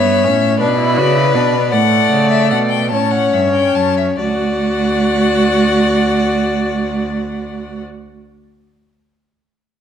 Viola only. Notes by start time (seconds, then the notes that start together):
Already playing: B3
0.24 C#4
0.60 D4
0.79 E4
0.97 F#4
1.16 E4
1.35 D4
1.54 B3
1.73 A3
2.92 C#4
4.21 F#4